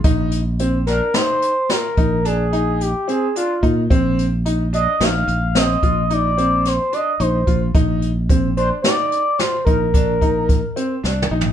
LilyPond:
<<
  \new Staff \with { instrumentName = "Analog synth lead" } { \time 7/4 \key bes \mixolydian \tempo 4 = 109 r4. bes'8 c''4 bes'4 aes'4 g'8 aes'8 f'8. r16 | r4. ees''8 f''4 ees''4 d''4 c''8 ees''8 c''8. r16 | r4. c''8 d''4 c''8 bes'2~ bes'8 r4 | }
  \new Staff \with { instrumentName = "Grand piano" } { \time 7/4 \key bes \mixolydian ees'4 c'8 d'8 ees'4 f'8 ees'8 d'8 ees'4 c'8 d'8 ees'8 | c'4 ees'8 d'8 ees'4 c'8 f'8 ees'8 c'4 d'8 ees'8 f'8 | ees'4 c'8 d'8 ees'4 f'8 ees'8 d'8 ees'4 c'8 d'8 ees'8 | }
  \new Staff \with { instrumentName = "Fingered electric bass" } { \clef bass \time 7/4 \key bes \mixolydian bes,,2 r4. bes,,2 r4 bes,8 | bes,,2 bes,,8 bes,,4 bes,,2 r8 bes,,8 bes,,8 | bes,,2 r4. bes,,2 r8 c,8 bes,,8 | }
  \new DrumStaff \with { instrumentName = "Drums" } \drummode { \time 7/4 <hh bd>8 hh8 hh8 <hh sn>8 <hh sn>8 hh8 <hh sn>8 <hh bd>8 hh8 hh8 hh8 hh8 hh8 <hh bd>8 | <hh bd>8 hh8 hh8 hh8 <hh sn>8 hh8 <hh sn>8 <hh bd>8 hh8 hh8 <hh sn>8 hh8 hh8 <hh bd>8 | <hh bd>8 hh8 <hh bd>8 hh8 <hh sn>8 hh8 <hh sn>8 <hh bd>8 <hh bd>8 <hh bd>8 <hh bd>8 hh8 \tuplet 3/2 { sn8 toml8 tomfh8 } | }
>>